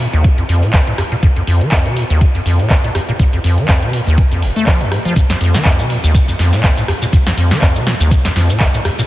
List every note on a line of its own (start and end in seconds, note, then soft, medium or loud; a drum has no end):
0.00 open hi-hat loud
0.13 0.26 D#2 loud
0.13 closed hi-hat soft
0.24 0.29 F2 medium
0.24 kick loud
0.24 closed hi-hat medium
0.38 0.44 F2 medium
0.38 closed hi-hat soft
0.49 0.64 F2 loud
0.49 open hi-hat loud
0.63 0.72 A#2 loud
0.63 open hi-hat medium
0.73 0.81 D#2 medium
0.73 kick loud
0.73 clap loud
0.73 closed hi-hat medium
0.87 0.93 A2 medium
0.87 closed hi-hat soft
0.98 1.03 F2 medium
0.98 cross-stick medium
0.98 open hi-hat loud
1.12 1.15 A#2 medium
1.12 closed hi-hat soft
1.23 1.27 F2 loud
1.23 kick loud
1.23 closed hi-hat medium
1.36 1.42 F2 medium
1.36 closed hi-hat soft
1.47 1.63 F2 loud
1.47 open hi-hat loud
1.61 1.70 F3 medium
1.61 closed hi-hat soft
1.71 1.87 F2 medium
1.71 kick loud
1.71 clap loud
1.71 closed hi-hat medium
1.86 1.98 C3 loud
1.86 closed hi-hat soft
1.97 2.04 A#2 loud
1.97 open hi-hat loud
2.10 2.23 D#2 loud
2.10 closed hi-hat soft
2.21 2.26 F2 medium
2.21 kick loud
2.21 closed hi-hat medium
2.35 2.41 F2 medium
2.35 closed hi-hat soft
2.46 2.61 F2 loud
2.46 open hi-hat loud
2.59 2.68 A#2 loud
2.59 closed hi-hat soft
2.70 2.78 D#2 medium
2.70 kick loud
2.70 clap loud
2.70 closed hi-hat medium
2.84 2.90 A2 medium
2.84 closed hi-hat soft
2.95 2.99 F2 medium
2.95 cross-stick medium
2.95 open hi-hat loud
3.09 3.12 A#2 medium
3.09 closed hi-hat soft
3.20 3.24 F2 loud
3.20 kick loud
3.20 closed hi-hat medium
3.33 3.39 F2 medium
3.33 closed hi-hat soft
3.44 3.59 F2 loud
3.44 open hi-hat loud
3.58 3.67 F3 medium
3.58 closed hi-hat soft
3.68 3.84 F2 medium
3.68 kick loud
3.68 clap loud
3.68 closed hi-hat medium
3.82 3.95 C3 loud
3.82 closed hi-hat soft
3.93 4.01 A#2 loud
3.93 open hi-hat loud
4.07 4.20 D#2 loud
4.07 closed hi-hat soft
4.18 4.22 F2 medium
4.18 kick loud
4.18 closed hi-hat medium
4.31 4.44 F2 medium
4.31 closed hi-hat soft
4.42 4.50 F1 medium
4.42 open hi-hat loud
4.56 4.65 A3 loud
4.56 open hi-hat medium
4.66 4.82 F3 medium
4.66 kick loud
4.66 clap loud
4.66 closed hi-hat medium
4.81 4.93 F2 medium
4.81 closed hi-hat soft
4.92 4.99 A2 loud
4.92 cross-stick medium
4.92 open hi-hat loud
5.05 5.14 F3 medium
5.05 closed hi-hat soft
5.16 5.21 F2 loud
5.16 kick loud
5.16 closed hi-hat medium
5.16 shaker medium
5.30 5.36 F2 medium
5.30 snare medium
5.30 closed hi-hat soft
5.30 shaker soft
5.41 5.56 F2 loud
5.41 open hi-hat loud
5.54 5.64 F3 medium
5.54 snare medium
5.54 closed hi-hat soft
5.54 shaker medium
5.65 5.81 F2 medium
5.65 kick loud
5.65 clap loud
5.65 closed hi-hat medium
5.65 shaker medium
5.79 5.91 C3 loud
5.79 closed hi-hat soft
5.79 shaker soft
5.90 5.98 A#2 loud
5.90 open hi-hat loud
6.04 6.16 D#2 loud
6.04 closed hi-hat soft
6.04 shaker medium
6.15 6.19 F2 loud
6.15 kick loud
6.15 closed hi-hat medium
6.15 shaker medium
6.28 6.34 F2 medium
6.28 closed hi-hat soft
6.28 shaker soft
6.39 6.54 F2 loud
6.39 snare soft
6.39 open hi-hat loud
6.53 6.62 A#2 loud
6.53 snare soft
6.53 closed hi-hat soft
6.53 shaker medium
6.63 6.71 D#2 medium
6.63 kick loud
6.63 clap loud
6.63 closed hi-hat medium
6.63 shaker soft
6.77 6.83 A2 medium
6.77 closed hi-hat soft
6.77 shaker soft
6.88 6.93 F2 medium
6.88 cross-stick medium
6.88 open hi-hat loud
7.02 7.06 A#2 medium
7.02 closed hi-hat soft
7.02 shaker medium
7.13 7.17 F2 loud
7.13 kick loud
7.13 closed hi-hat medium
7.13 shaker medium
7.26 7.33 F2 medium
7.26 snare medium
7.26 closed hi-hat soft
7.26 shaker soft
7.37 7.53 F2 loud
7.37 open hi-hat loud
7.51 7.60 F3 medium
7.51 snare medium
7.51 closed hi-hat soft
7.51 shaker medium
7.62 7.77 F2 medium
7.62 kick loud
7.62 clap loud
7.62 closed hi-hat medium
7.62 shaker medium
7.76 7.88 C3 loud
7.76 closed hi-hat soft
7.76 shaker soft
7.87 7.94 A#2 loud
7.87 snare medium
7.87 open hi-hat medium
8.00 8.13 D#2 loud
8.00 closed hi-hat soft
8.00 shaker medium
8.11 8.16 F2 loud
8.11 kick loud
8.11 closed hi-hat medium
8.11 shaker medium
8.25 8.31 F2 medium
8.25 snare medium
8.25 closed hi-hat soft
8.25 shaker soft
8.36 8.51 F2 loud
8.36 snare soft
8.36 open hi-hat medium
8.49 8.59 A#2 loud
8.49 open hi-hat medium
8.49 shaker medium
8.60 8.68 D#2 medium
8.60 kick loud
8.60 clap loud
8.60 closed hi-hat medium
8.60 shaker medium
8.74 8.80 A2 medium
8.74 closed hi-hat soft
8.74 shaker soft
8.85 8.90 F2 medium
8.85 cross-stick medium
8.85 open hi-hat loud
8.99 9.02 A#2 medium
8.99 closed hi-hat soft
8.99 shaker medium